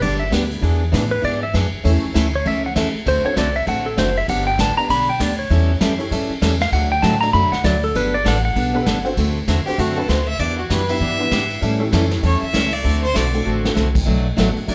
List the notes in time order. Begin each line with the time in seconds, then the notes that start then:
0.01 G1 D3 G3 B3 D4 G4 D5, kick, ride
0.20 E5
0.30 D2 D3 G3 B3 D4 G4 B4, kick, snare, hi-hat pedal, ride
0.51 ride
0.61 E2 E3 B3 D4 G#4, kick, ride
0.92 A2 E3 B3 D4 E4 G#4 B4, kick, snare, hi-hat pedal, ride
1.11 B4
1.22 G#2 E3 B3 D4 G#4 D5, kick, ride
1.43 E5
1.53 F#2 E3 B3 D4 G#4, kick, snare, hi-hat pedal, ride
1.73 muted upright bass stroke
1.83 E2 E3 A3 C#4 E4 A4 C#5, kick, ride
2.03 muted upright bass stroke
2.14 D2 E3 A3 C#4 E4 A4, kick, snare, hi-hat pedal, ride
2.36 C#5
2.45 C#2 E3 A3 C#4 E4 A4 E5, kick, ride
2.66 F#5
2.75 E2 E3 A3 C#4 E4 A4, kick, snare, hi-hat pedal, ride
2.95 muted upright bass stroke
3.06 D2 D3 A3 C4 F#4 A4 C5, kick, ride
3.24 C4 D4 F#4 A4 C5 C#5, muted upright bass stroke
3.36 C2 D3 A3 C4 F#4 A4 D5, kick, snare, hi-hat pedal, ride
3.55 E5, ride
3.66 A1 D3 A3 C4 F#4 A4 F#5, kick, ride
3.86 A4
3.97 F#1 D3 A3 C4 D4 F#4 A4 C5, kick, snare, hi-hat pedal, ride
4.16 E5, ride
4.28 G1 D3 G3 B3 D4 G4 F#5, kick, ride
4.47 G5
4.58 A1 D3 G3 B3 D4 G4 A5, kick, snare, hi-hat pedal, ride
4.76 B3 D4 G4 B4 D5 A#5, muted upright bass stroke, ride
4.89 B1 D3 G3 B3 D4 G4 B5, kick, ride
5.09 G5
5.19 D2 D3 G3 B3 D4 G4 D5, kick, snare, hi-hat pedal, ride
5.39 C#5
5.50 E2 E3 G3 C#4 E4 A4, kick, ride
5.81 F#2 E3 G3 C#4 E4 A4, kick, snare, hi-hat pedal, ride
5.98 C#4 E4 G4 A4 C#5, ride
6.11 G2 E3 G3 C#4 E4 A4, kick, ride
6.29 muted upright bass stroke
6.41 E2 E3 G3 C#4 E4 A4, kick, snare, hi-hat pedal, ride
6.61 F5, snare, ride
6.72 D2 D3 F#3 A3 D4 F#4 F#5, kick, ride
6.92 G5
7.02 A2 D3 F#3 A3 D4 F#4 A5, kick, snare, hi-hat pedal, ride
7.21 A3 D4 F#4 A4 D5 A#5, ride
7.33 F#2 D3 F#3 A3 D4 F#4 B5, kick, ride
7.52 F#5, muted upright bass stroke, snare
7.64 D2 D3 F#3 A3 D4 F#4 D5, kick, snare, hi-hat pedal, ride
7.83 A4, ride
7.95 G1 G3 B3 D4 A4 B4, kick, ride
8.14 D5
8.24 A1 G3 B3 D4 A4 F#5, kick, snare, hi-hat pedal, ride
8.45 F#5
8.55 B1 G3 B3 D4 A4, kick, ride
8.73 B3 D4 G4 A4 B4
8.86 G1 G3 B3 D4 A4, kick, snare, hi-hat pedal, ride
9.04 C4 D4 F#4 A4 C5, ride
9.17 D2 D3 A3 C4 F#4 A4, kick, ride
9.48 E2 D3 A3 C4 F#4 A4, kick, snare, hi-hat pedal, ride
9.66 C4 D4 F#4 G4 A4 C5, muted upright bass stroke, ride
9.78 F#2 D3 A3 C4 F#4 A4, kick, ride
9.97 C4 D4 F#4 A4 B4
10.08 D2 D3 A3 C4 F#4 A4 C5, kick, snare, hi-hat pedal, ride
10.27 E5
10.39 E2 E3 B3 D4 G4 D5, kick, ride
10.58 F#4
10.70 F#2 E3 B3 D4 G4 B4, kick, snare, hi-hat pedal, ride
10.88 B3 D4 E4 G4 B4 E5, ride
11.00 G2 E3 B3 D4 G4, kick
11.19 B3 D4 E4 G4 B4
11.31 G#2 E3 B3 D4 G4, kick, snare, hi-hat pedal, ride
11.50 ride
11.61 A2 E3 G3 C#4 E4 A4, kick, ride
11.79 A3 C#4 E4 G4 A4
11.92 F#2 E3 G3 C#4 E4 A4, kick, snare, hi-hat pedal, ride
12.11 snare
12.23 E2 E3 G3 C#4 E4 A4 C#5, kick, ride
12.41 E5, muted upright bass stroke
12.53 C#2 E3 G3 A3 C#4 E4 G4 A4, kick, snare, hi-hat pedal, ride
12.73 D5
12.83 D2 D3 A3 C4 F#4 A4, kick, ride
13.04 C5
13.14 B1 D3 A3 C4 F#4 A4 D5, kick, snare, hi-hat pedal, ride
13.33 A3 C4 D4 F#4 A4, ride
13.45 A1 D3 A3 C4 F#4 A4
13.64 A3 C4 D4 F#4 A4, snare
13.75 C2 D3 A3 C4 F#4 A4, snare, hi-hat pedal
13.95 kick, crash
14.06 B1 B2 F#3 A3 D4 F#4, kick
14.36 A1 B2 F#3 A3 B3 D4 F#4 A4, kick, snare, hi-hat pedal, ride
14.57 muted upright bass stroke, ride
14.67 D2 B2 F#3 A3 D4 F#4 D5, kick, ride